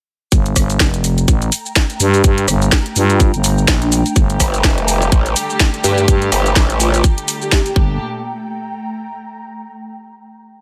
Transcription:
0.32 G1 A3, kick, closed hi-hat, shaker
0.44 G5 A#5, closed hi-hat, shaker
0.56 G1, kick, cross-stick, open hi-hat, shaker
0.70 closed hi-hat, shaker
0.80 F1, kick, snare, closed hi-hat, shaker
0.94 closed hi-hat, shaker
1.04 open hi-hat, shaker
1.18 closed hi-hat, shaker
1.28 A1, kick, closed hi-hat, shaker
1.42 closed hi-hat, shaker
1.52 open hi-hat, shaker
1.66 shaker
1.76 kick, snare, closed hi-hat, shaker
1.90 closed hi-hat, shaker
2.00 G2 G4, open hi-hat, shaker
2.14 G4, closed hi-hat, shaker
2.24 G2, kick, closed hi-hat, shaker
2.38 closed hi-hat, shaker
2.48 G1, cross-stick, open hi-hat, shaker
2.62 closed hi-hat, shaker
2.72 kick, snare, closed hi-hat, shaker
2.86 closed hi-hat, shaker
2.96 G2 F4, open hi-hat, shaker
3.10 F4, closed hi-hat, shaker
3.20 kick, closed hi-hat, shaker
3.34 G1, closed hi-hat, shaker
3.44 open hi-hat, shaker
3.58 shaker
3.68 kick, snare, closed hi-hat, shaker
3.82 D4, closed hi-hat, shaker
3.92 open hi-hat, shaker
4.06 closed hi-hat, shaker
4.16 G1 D3 G3 A3 G4, kick, closed hi-hat, shaker
4.30 closed hi-hat, shaker
4.40 G1, kick, cross-stick, open hi-hat, shaker
4.54 closed hi-hat, shaker
4.64 F1, kick, snare, closed hi-hat, shaker
4.78 closed hi-hat, shaker
4.88 open hi-hat, shaker
5.02 closed hi-hat, shaker
5.12 A1, kick, closed hi-hat, shaker
5.26 closed hi-hat, shaker
5.36 open hi-hat, shaker
5.50 shaker
5.60 kick, snare, closed hi-hat, shaker
5.74 closed hi-hat, shaker
5.84 G2 G4, open hi-hat, shaker
5.98 G4, closed hi-hat, shaker
6.08 G2, kick, closed hi-hat, shaker
6.22 closed hi-hat, shaker
6.32 G1, cross-stick, open hi-hat, shaker
6.46 closed hi-hat, shaker
6.56 A1, kick, snare, closed hi-hat, shaker
6.70 closed hi-hat, shaker
6.80 F4, open hi-hat, shaker
6.94 closed hi-hat, shaker
7.04 kick, closed hi-hat, shaker
7.18 closed hi-hat, shaker
7.28 open hi-hat, shaker
7.42 G4, shaker
7.52 G4, kick, snare, closed hi-hat, shaker
7.66 closed hi-hat, shaker
7.76 G1 A#2 A3 D4 G4, kick
7.84 G5
8.16 A#5

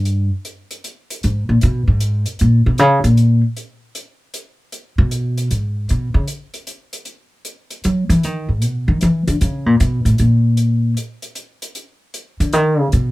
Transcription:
Already playing: G2
0.05 closed hi-hat
0.45 closed hi-hat
0.71 closed hi-hat
0.84 closed hi-hat
1.10 closed hi-hat
1.23 G#2, closed hi-hat
1.49 A#2
1.61 B2, closed hi-hat
1.88 G#2
2.00 closed hi-hat
2.26 closed hi-hat
2.39 A#2, closed hi-hat
2.66 B2
2.78 C#3, closed hi-hat
3.04 A#2, closed hi-hat
3.17 closed hi-hat
3.57 closed hi-hat
3.95 closed hi-hat
4.34 closed hi-hat
4.72 closed hi-hat
4.98 B2
5.11 closed hi-hat
5.38 closed hi-hat
5.51 G#2, closed hi-hat
5.89 B2, closed hi-hat
6.14 C#3
6.28 closed hi-hat
6.54 closed hi-hat
6.67 closed hi-hat
6.93 closed hi-hat
7.05 closed hi-hat
7.45 closed hi-hat
7.71 closed hi-hat
7.84 F#3, closed hi-hat
8.09 E3, closed hi-hat
8.23 D#3, closed hi-hat
8.49 G#2
8.62 B2, closed hi-hat
8.88 D#3
9.01 E3, closed hi-hat
9.28 D3, closed hi-hat
9.41 C#3, closed hi-hat
9.66 A#2
9.80 B2, closed hi-hat
10.05 A2, closed hi-hat
10.18 A#2, closed hi-hat
10.57 closed hi-hat
10.97 closed hi-hat
11.22 closed hi-hat
11.35 closed hi-hat
11.62 closed hi-hat
11.75 closed hi-hat
12.14 closed hi-hat
12.40 D3, closed hi-hat
12.53 D#3, closed hi-hat
12.79 C#3
12.92 B2, closed hi-hat

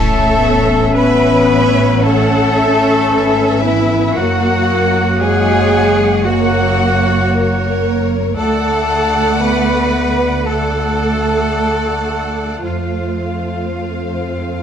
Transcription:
Already playing: A1 A3 C#4 A4 C#5 E5 A5
0.42 B3
0.95 B3 C#4 B4 C#5 E5 B5
1.50 E5
2.02 A3 C#4 A4 C#5 E5 F#5 A5
2.57 E5
3.10 G#1 C#4 B4 E5
3.63 E3 B3 E4 E5
4.15 F#1 F#3 A#3 F#4 A#4 F#5
4.69 A#3
5.21 F#3 G#3 G#4 C#5 F#5 G#5
5.73 G#3
6.25 F#3 A#3 F#4 C#5 F#5
6.78 A#3
7.31 A#3 A#4 C#5
8.35 D2 A3 A4 D5 F#5 A5
9.40 B3 B4 B5
10.45 A3 A4 D5 F#5 A5
12.65 F2 F3 A3 F4 C5 F5
13.81 C4

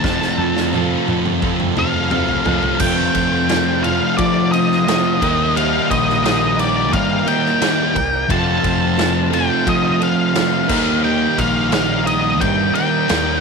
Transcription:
Already playing: A5
0.03 F2 C3 F3 A3 C4 F4 A4, kick, snare
0.22 snare
0.38 F2 C3 F3 A3 C4 F4 A4
0.56 snare
0.72 F2 C3 F3 A3 C4 F4 A4, high tom
1.07 F2 C3 F3 A3 C4 F4 A4, high tom
1.26 mid tom
1.41 F2 C3 F3 A3 C4 F4 A4, kick
1.60 mid tom
1.75 F2 C3 F3 A3 C4 F4 A4 F5, mid tom
2.10 F2 C3 F3 A3 C4 F4 A4, mid tom
2.28 floor tom
2.45 F2 C3 F3 A3 C4 F4 A4, floor tom
2.63 floor tom
2.79 F2 C3 F3 A3 C4 F4 A4 F5 G5, kick, crash
3.13 F2 C4 F4 A4, kick, ride
3.48 F3 C4 F4 A4, snare, ride
3.84 F2 C3 F3 F4 A4 F5, ride
3.88 C4
4.18 F3 C4 F4 A4 D5, kick, ride
4.52 C4 F4 A4 D#5, ride
4.71 snare
4.86 F2 C3 F3 C4 F4 A4, snare, ride
5.20 D#2 D#3 G3 A#3 D#4 G4 A#4 G5, kick, ride
5.24 A#3 D#4
5.55 D#3 G3 A#3 D#4 A#4 F5, ride
5.89 A#1 A#3 D#4 A#4 D#5, kick, ride
6.09 snare
6.23 D#3 G3 A#3 D#4 A#4 D#5, snare, ride
6.27 D#4
6.58 A#3 D#4 A#4 D5, ride
6.92 G2 G3 A#3 D#4 A#4 F5, kick, ride
7.26 A#3 D#4 A#4 G5, ride
7.30 D#3
7.45 snare
7.61 D#3 G3 A#3 D#4 G4 A#4, snare, ride
7.94 C2 A#3 D#4 A#4, kick, ride
8.29 F2 C3 F3 A3 C4 F4 A4 F5 A5, kick, ride
8.63 F2 C4 F4 A4, kick, ride
8.96 F3 C4 F4 A4, snare, ride
9.31 F2 C3 F3 C4 F4 A4 G5, ride
9.65 F3 C4 F4 A4, kick, ride
9.69 D#5
9.99 C4 F4 A4 F5, ride
10.34 F2 C3 F3 C4 F4 A4, snare, ride
10.68 D#2 D#3 G3 A#3 D#4 G4 A#4 D#5, kick, crash
10.72 D#4
11.04 D#3 G3 A#3 D#4 A#4 G5
11.38 A#1 A#3 D#4 A#4 F5, kick, ride
11.72 D#3 G3 A#3 D#4 A#4 F5, snare, ride
12.06 A#3 D#4 A#4 D#5, ride
12.40 G2 G3 A#3 D#4 A#4 G5, kick, ride
12.73 A#3 D#4 A#4 G5, ride
12.78 D#3
13.08 D#2 D#3 G3 A#3 D#4 G4 A#4, snare, ride

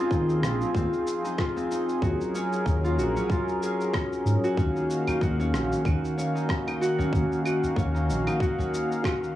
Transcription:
Already playing: F3 C4 D#4 F4 G#4
0.11 D#2 D#4, kick, shaker
0.29 shaker
0.42 A#1 F4, cross-stick, shaker
0.61 shaker
0.74 D#2 C4, kick, shaker
0.93 shaker
1.07 shaker
1.25 D#4, shaker
1.38 F4, kick, cross-stick, shaker
1.56 C4, shaker
1.71 D#4, shaker
1.89 shaker
2.02 D#2 F#3 C#4 F#4 A#4, kick, shaker
2.21 shaker
2.35 C#4, shaker
2.52 shaker
2.66 D#2, kick, shaker
2.84 F4, shaker
2.97 A#1 F#4, shaker
3.16 C#4, shaker
3.30 F4, kick, shaker
3.48 shaker
3.62 G#4, shaker
3.81 shaker
3.94 C#4, kick, cross-stick, shaker
4.13 shaker
4.26 G#2, shaker
4.44 F#4, shaker
4.57 D#2 D#3 A#3 C#4 F#4 F5, kick, shaker
4.76 D#4, shaker
4.90 shaker
5.07 D#4, udu, claves, shaker
5.21 D#2 F#4, kick, shaker
5.40 C#4, shaker
5.53 A#1, cross-stick, shaker
5.72 shaker
5.85 D#2 F#4, kick, claves, shaker
6.05 shaker
6.18 C#4, shaker
6.35 D#4, shaker
6.49 kick, cross-stick, shaker
6.67 D#4, claves, shaker
6.81 F#4, shaker
6.98 C#4, udu, shaker
7.13 D#2, kick, shaker
7.32 shaker
7.45 F#4, claves, shaker
7.63 udu, shaker
7.76 D#2 C#4, kick, shaker
7.94 D#4, shaker
8.09 A#1, shaker
8.27 D#4, claves, shaker
8.40 F#4, kick, shaker
8.59 C#4, udu, shaker
8.74 shaker
8.92 shaker
9.04 F#4, kick, cross-stick, claves, shaker
9.23 shaker

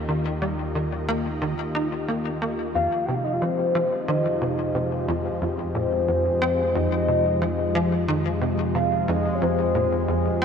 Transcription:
Already playing: D#2 D#3 D#4 F4 G4 A#4 D#5
0.09 D#3
0.42 G3
0.75 D#3
1.09 A#3
1.42 D#3
1.75 D#4
2.08 A#3
2.42 A#3
2.75 F2 F3 G#3 F5
3.06 C3 G5
3.15 F5
3.24 D#5
3.33 F5
3.42 F3 C5
3.75 F3
3.83 G#4
4.08 D#3 D#5
4.42 C3
4.75 C3
5.08 F2
5.42 F2 C5
5.75 A#2
6.08 F2
6.42 C4
6.75 F2 D#5
7.08 C3
7.42 F3
7.75 F3
8.08 D#3
8.41 C3
8.75 C3 F5
9.08 F2 D#5
9.35 C#5
9.42 F2 C5
9.75 A#2
10.08 F2
10.42 C4

